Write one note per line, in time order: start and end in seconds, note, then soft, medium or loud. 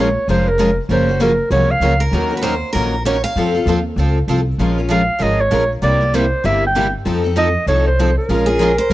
0.00 0.16 A#1 medium
0.00 0.28 C#5 medium
0.28 0.77 F1 medium
0.28 0.48 F3 medium
0.28 0.48 G#3 medium
0.28 0.48 C#4 medium
0.28 0.48 F4 medium
0.28 0.48 A#4 medium
0.28 0.50 C5 medium
0.48 0.78 A#4 medium
0.58 0.69 F3 medium
0.58 0.69 G#3 medium
0.58 0.70 C#4 medium
0.58 0.70 F4 medium
0.58 0.70 A#4 medium
0.89 1.38 F#1 medium
0.89 1.08 C#3 medium
0.89 1.08 F3 medium
0.89 1.09 F#3 medium
0.89 1.08 A#3 medium
0.89 1.08 C#4 medium
0.89 1.09 F4 medium
0.89 1.08 F#4 medium
0.89 1.10 A#4 medium
0.89 1.19 C5 medium
1.09 1.19 A#3 soft
1.09 1.20 C#4 soft
1.09 1.20 F#4 soft
1.20 1.31 C#3 medium
1.20 1.31 F3 medium
1.20 1.31 F#3 medium
1.20 1.31 A#3 medium
1.20 1.31 C#4 medium
1.20 1.31 F4 medium
1.20 1.31 F#4 medium
1.20 1.31 A#4 medium
1.20 1.50 A#4 medium
1.50 1.77 C2 medium
1.50 1.70 C#3 medium
1.50 1.71 F3 medium
1.50 1.71 F#3 medium
1.50 1.71 A#3 medium
1.50 1.71 C#4 medium
1.50 1.71 F4 medium
1.50 1.71 F#4 medium
1.50 1.71 A#4 medium
1.50 1.73 C#5 medium
1.71 2.01 F5 medium
1.80 2.07 C#2 medium
1.80 1.92 C#3 medium
1.80 1.93 F3 medium
1.80 1.93 F#3 medium
1.80 1.93 A#3 medium
1.80 1.93 C#4 medium
1.80 1.93 F4 medium
1.80 1.93 F#4 medium
1.80 1.93 A#4 medium
2.00 2.37 A#4 medium
2.12 2.61 D#2 medium
2.12 2.30 D#3 medium
2.12 2.32 F#3 medium
2.12 2.31 A#3 medium
2.12 2.31 C#4 medium
2.12 2.33 D#4 medium
2.12 2.31 F#4 medium
2.12 2.30 A#4 medium
2.31 2.42 C#4 soft
2.31 2.42 F#4 soft
2.31 2.43 A#4 medium
2.37 2.42 B4 medium
2.42 2.54 D#3 medium
2.42 2.54 F#3 medium
2.42 2.54 A#3 medium
2.42 2.54 C#4 medium
2.42 2.54 D#4 medium
2.42 2.54 F#4 medium
2.42 2.54 A#4 medium
2.42 2.72 C5 medium
2.73 3.24 A#1 medium
2.73 2.94 D#3 medium
2.73 2.94 F#3 medium
2.73 2.94 A#3 medium
2.73 2.94 C#4 medium
2.73 2.94 D#4 medium
2.73 2.94 F#4 medium
2.73 3.02 A#4 medium
2.73 2.94 A#4 medium
3.05 3.16 D#3 medium
3.05 3.16 F#3 medium
3.05 3.16 A#3 medium
3.05 3.16 C#4 medium
3.05 3.16 D#4 medium
3.05 3.16 F#4 medium
3.05 3.16 A#4 medium
3.05 3.23 C#5 medium
3.24 3.81 F5 medium
3.36 3.60 F2 medium
3.36 3.54 F3 medium
3.36 3.54 C4 medium
3.36 3.54 F4 medium
3.36 3.53 A4 medium
3.55 3.66 C4 soft
3.55 3.67 F4 medium
3.55 3.66 A4 medium
3.66 3.92 D#2 medium
3.66 3.77 F3 medium
3.66 3.78 C4 medium
3.66 3.78 F4 medium
3.66 3.78 A4 medium
3.96 4.23 C#2 medium
3.96 4.17 F3 medium
3.96 4.17 C4 medium
3.96 4.17 F4 medium
3.96 4.18 A4 medium
4.28 4.54 C2 medium
4.28 4.39 F3 medium
4.28 4.40 C4 medium
4.28 4.40 F4 medium
4.28 4.40 A4 medium
4.58 5.08 A#1 medium
4.58 4.77 F3 medium
4.58 4.77 G#3 medium
4.58 4.77 C#4 medium
4.58 4.78 F4 medium
4.58 4.77 A#4 medium
4.78 4.90 C#4 soft
4.78 4.90 F4 soft
4.78 4.90 A#4 soft
4.90 5.01 F3 medium
4.90 5.01 G#3 medium
4.90 5.01 C#4 medium
4.90 5.01 F4 medium
4.90 5.02 A#4 medium
4.90 5.24 F5 medium
5.20 5.47 G#1 medium
5.20 5.40 F3 medium
5.20 5.41 G#3 medium
5.20 5.41 C#4 medium
5.20 5.41 F4 medium
5.20 5.41 A#4 medium
5.20 5.42 D#5 medium
5.41 5.71 C#5 medium
5.51 5.77 A#1 medium
5.51 5.62 F3 medium
5.51 5.62 G#3 medium
5.51 5.63 C#4 medium
5.51 5.63 F4 medium
5.51 5.63 A#4 medium
5.82 6.32 C2 medium
5.82 6.00 C3 medium
5.82 6.00 G3 medium
5.82 6.00 A#3 medium
5.82 6.00 E4 medium
5.82 5.99 G4 medium
5.82 6.17 D5 medium
6.01 6.13 A#3 soft
6.01 6.13 E4 soft
6.01 6.13 G4 medium
6.14 6.24 C3 medium
6.14 6.24 G3 medium
6.14 6.25 A#3 medium
6.14 6.25 E4 medium
6.14 6.25 G4 medium
6.14 6.47 C5 medium
6.44 6.94 G1 medium
6.44 6.64 C3 medium
6.44 6.64 G3 medium
6.44 6.64 A#3 medium
6.44 6.64 E4 medium
6.44 6.64 G4 medium
6.44 6.63 E5 medium
6.67 6.93 G5 medium
6.76 6.86 C3 medium
6.76 6.86 G3 medium
6.76 6.86 A#3 medium
6.76 6.86 E4 medium
6.76 6.87 G4 medium
7.05 7.55 F2 medium
7.05 7.23 F3 medium
7.05 7.23 C4 medium
7.05 7.24 D#4 medium
7.05 7.23 A4 medium
7.24 7.35 C4 soft
7.24 7.36 D#4 soft
7.24 7.36 A4 medium
7.36 7.47 F3 medium
7.36 7.47 C4 medium
7.36 7.47 D#4 medium
7.36 7.48 A4 medium
7.36 7.66 D#5 loud
7.67 8.16 C2 medium
7.67 7.87 F3 medium
7.67 7.87 C4 medium
7.67 7.88 D#4 medium
7.67 7.88 A4 medium
7.67 7.85 C#5 medium
7.87 8.15 C5 medium
7.99 8.09 F3 medium
7.99 8.09 C4 medium
7.99 8.10 D#4 medium
7.99 8.10 A4 medium
8.17 8.93 A#4 medium
8.29 8.78 A#1 medium
8.29 8.47 F3 medium
8.29 8.47 G#3 medium
8.29 8.47 C#4 medium
8.29 8.47 F4 medium
8.29 8.45 A#4 medium
8.46 8.58 C#4 soft
8.46 8.58 F4 soft
8.46 8.78 G#4 medium
8.46 8.59 A#4 medium
8.59 8.70 F3 medium
8.59 8.70 G#3 medium
8.59 8.70 C#4 medium
8.59 8.70 F4 medium
8.59 8.71 A#4 medium
8.78 8.90 C5 medium
8.90 8.93 A#1 medium
8.90 8.93 F3 medium
8.90 8.93 G#3 medium